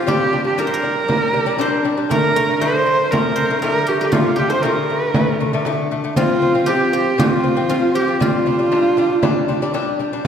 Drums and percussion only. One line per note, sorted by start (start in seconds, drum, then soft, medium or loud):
0.08 frame drum medium
0.34 frame drum soft
0.59 frame drum medium
0.84 frame drum soft
1.09 frame drum medium
1.36 frame drum soft
1.60 frame drum medium
1.87 frame drum soft
2.11 frame drum medium
2.36 frame drum soft
2.61 frame drum medium
3.13 frame drum medium
3.38 frame drum soft
3.63 frame drum medium
3.88 frame drum soft
4.13 frame drum medium
4.38 frame drum soft
4.64 frame drum medium
5.14 frame drum medium
5.40 frame drum soft
5.65 frame drum medium
5.91 frame drum soft
6.16 frame drum medium
6.42 frame drum soft
6.68 frame drum medium
7.19 frame drum medium
7.45 frame drum soft
7.70 frame drum medium
7.96 frame drum soft
8.21 frame drum medium
8.47 frame drum soft
8.73 frame drum medium
8.97 frame drum soft
9.23 frame drum medium
9.49 frame drum soft
9.75 frame drum medium
9.99 frame drum soft